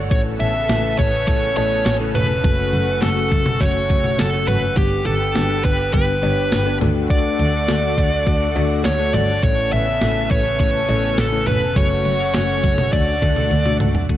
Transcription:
Already playing: double bass G1
0.11 double bass A1, analog synth pad C#3 B3 A4, tine electric piano A3 C#4 E4 A4, lead electric guitar C#5, kick, closed hi-hat
0.40 double bass A1, lead electric guitar E5, closed hi-hat
0.69 double bass A1, tine electric piano A3 C#4 E4 A4, snare, closed hi-hat
0.98 double bass A1, lead electric guitar C#5, kick, closed hi-hat
1.28 double bass A1, tine electric piano A3 C#4 E4 A4, lead electric guitar C#5, kick, closed hi-hat
1.57 double bass A1, tine electric piano A3 C#4 E4 A4, lead electric guitar C#5, closed hi-hat, cowbell
1.86 double bass A1, lead electric guitar C#5, snare, closed hi-hat
2.00 tine electric piano A3 C#4 E4 A4
2.15 double bass E1, lead electric guitar B4, closed hi-hat, mid tom
2.44 double bass F#1, analog synth pad A3 F#4, tine electric piano A3 C#4 F#4 A4, kick, closed hi-hat
2.73 double bass F#1, closed hi-hat
3.02 double bass F#1, tine electric piano A3 C#4 F#4 A4, lead electric guitar A4, snare, closed hi-hat
3.32 double bass F#1, kick, closed hi-hat
3.46 mid tom
3.61 double bass F#1, tine electric piano A3 C#4 F#4 A4, lead electric guitar C#5, kick, closed hi-hat
3.90 double bass F#1, tine electric piano A3 C#4 F#4 A4, kick, closed hi-hat
4.04 mid tom
4.19 double bass F#1, lead electric guitar A4, snare, closed hi-hat
4.34 tine electric piano A3 C#4 F#4 A4
4.48 double bass F#1, lead electric guitar B4, closed hi-hat, mid tom
4.77 double bass G1, analog synth pad D3 B3 G4, tine electric piano B3 D4 G4 B4, lead electric guitar G4, kick, closed hi-hat
5.06 double bass G1, lead electric guitar A4, closed hi-hat
5.35 double bass G1, tine electric piano B3 D4 G4 B4, snare, closed hi-hat
5.65 double bass G1, lead electric guitar B4, kick, closed hi-hat
5.94 double bass G1, tine electric piano B3 D4 G4 B4, lead electric guitar B4, kick, closed hi-hat
6.23 double bass G1, tine electric piano B3 D4 G4 C#5, closed hi-hat, cowbell
6.52 double bass G1, snare, closed hi-hat
6.67 tine electric piano B3 D4 G4 B4
6.81 double bass D2, tine electric piano A3 D4 F#4 A4, analog synth pad A3 F#4, closed hi-hat, mid tom
7.10 lead electric guitar D5, kick, closed hi-hat
7.39 double bass D2, closed hi-hat
7.68 double bass D2, tine electric piano A3 D4 F#4 A4, snare, closed hi-hat
7.98 double bass D2, kick, closed hi-hat
8.27 double bass D2, tine electric piano A3 D4 F#4 A4, kick, closed hi-hat
8.56 double bass D2, tine electric piano A3 D4 F#4 A4, closed hi-hat, cowbell
8.85 double bass D2, lead electric guitar C#5, snare, closed hi-hat
9.00 tine electric piano A3 D4 F#4 A4
9.14 double bass G1, lead electric guitar D5, closed hi-hat, mid tom
9.43 double bass A1, analog synth pad C#3 B3 A4, tine electric piano A3 C#4 E4 A4, lead electric guitar C#5, kick, closed hi-hat
9.72 double bass A1, lead electric guitar E5, closed hi-hat
10.01 double bass A1, tine electric piano A3 C#4 E4 A4, snare, closed hi-hat
10.31 double bass A1, lead electric guitar C#5, kick, closed hi-hat
10.60 double bass A1, tine electric piano A3 C#4 E4 A4, lead electric guitar C#5, kick, closed hi-hat
10.89 double bass A1, tine electric piano A3 C#4 E4 A4, closed hi-hat, cowbell
11.18 double bass A1, lead electric guitar A4, snare, closed hi-hat
11.33 tine electric piano A3 C#4 E4 A4
11.47 double bass E1, lead electric guitar B4, closed hi-hat, mid tom
11.76 double bass F#1, analog synth pad A3 F#4, tine electric piano A3 C#4 F#4 A4, lead electric guitar C#5, kick, closed hi-hat
12.05 double bass F#1, closed hi-hat
12.34 double bass F#1, tine electric piano A3 C#4 F#4 A4, lead electric guitar C#5, snare, closed hi-hat
12.64 double bass F#1, kick, closed hi-hat
12.78 mid tom
12.93 double bass D2, analog synth pad D3 A3, tine electric piano A3 D4 F#4 A4, lead electric guitar D5, kick, closed hi-hat
13.22 double bass D2, tine electric piano A3 D4 F#4 A4, kick, closed hi-hat
13.36 mid tom
13.51 double bass D2, closed hi-hat, high tom
13.66 tine electric piano A3 D4 F#4 A4, mid tom
13.80 double bass C#2, closed hi-hat, mid tom
13.95 floor tom
14.09 double bass D2, tine electric piano A3 D4 F#4 A4, kick, closed hi-hat

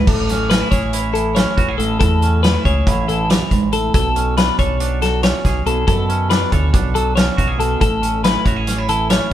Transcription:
0.07 fingered electric bass A1, clean electric guitar A2 A4, kick, crash
0.29 clean electric guitar C#4, snare, closed hi-hat
0.50 clean electric guitar C#4 B4, snare, closed hi-hat
0.60 clean electric guitar E4
0.71 fingered electric bass A1, clean electric guitar G#4 C#5, kick, snare, closed hi-hat
0.93 clean electric guitar E4, closed hi-hat
1.14 clean electric guitar E3 A4, closed hi-hat
1.35 clean electric guitar C#4 C#5, snare, closed hi-hat
1.57 fingered electric bass A1, clean electric guitar F#4, kick, closed hi-hat
1.69 clean electric guitar G#4
1.78 fingered electric bass A1, clean electric guitar A2 A4, closed hi-hat
2.00 fingered electric bass E2, clean electric guitar A2 A4, kick, closed hi-hat
2.22 clean electric guitar C#4, closed hi-hat
2.43 clean electric guitar C#4 B4, snare, closed hi-hat
2.54 clean electric guitar E4
2.65 fingered electric bass C#2, clean electric guitar G#4 C#5, kick, closed hi-hat
2.86 fingered electric bass A1, clean electric guitar E4, kick, closed hi-hat
3.08 clean electric guitar E3 A4, closed hi-hat
3.29 clean electric guitar F#2 C#5, snare, closed hi-hat
3.51 fingered electric bass A1, clean electric guitar G#2, kick, closed hi-hat
3.72 clean electric guitar A2 A4, closed hi-hat
3.94 fingered electric bass B1, clean electric guitar B2 A4, kick, closed hi-hat
4.16 clean electric guitar C#4, closed hi-hat
4.37 clean electric guitar D4 B4, snare, closed hi-hat
4.59 fingered electric bass B1, clean electric guitar A4 C#5, kick, closed hi-hat
4.80 clean electric guitar D4, closed hi-hat
5.02 clean electric guitar F#3 A4, snare, closed hi-hat
5.23 clean electric guitar C#4 C#5, snare, closed hi-hat
5.45 fingered electric bass B1, clean electric guitar G#4, kick, snare, closed hi-hat
5.66 fingered electric bass B1, clean electric guitar B2 A4, closed hi-hat
5.87 fingered electric bass F#2, clean electric guitar B2 A4, kick, closed hi-hat
6.09 clean electric guitar C#4, closed hi-hat
6.30 clean electric guitar D4 B4, snare, closed hi-hat
6.52 fingered electric bass D2, clean electric guitar A4 C#5, kick, closed hi-hat
6.73 fingered electric bass B1, clean electric guitar D4, kick, closed hi-hat
6.95 clean electric guitar F#3 A4, closed hi-hat
7.16 clean electric guitar C#4 C#5, snare, closed hi-hat
7.37 fingered electric bass B1, clean electric guitar F#4, kick, closed hi-hat
7.48 clean electric guitar G#4
7.58 clean electric guitar B2 A4, closed hi-hat
7.80 fingered electric bass A1, clean electric guitar A2 A4, kick, closed hi-hat
8.02 clean electric guitar C#4, closed hi-hat
8.24 clean electric guitar E4 B4, snare, closed hi-hat
8.45 fingered electric bass A1, clean electric guitar F#4 C#5, kick, closed hi-hat
8.56 clean electric guitar G#4
8.67 clean electric guitar C#4, snare, closed hi-hat
8.78 clean electric guitar E4
8.88 clean electric guitar E3 A4, closed hi-hat
9.10 clean electric guitar C#4 C#5, snare, closed hi-hat

